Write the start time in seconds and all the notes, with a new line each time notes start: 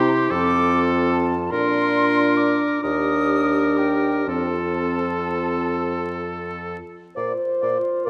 Already playing: C3 C4 E4 G4 C6
0.30 F2 C4 F4 A4 D6
1.11 A5
1.51 A#2 D4 F4 A#4 C6
2.37 D6
2.82 D#2 D4 G4 A#4 D#6
3.77 G5
4.25 F2 C4 F4 A4 A5
7.16 A#2 F4 C5 D5 F5
7.61 A#2 D5 F5
8.05 A#2 A#4 D5 F5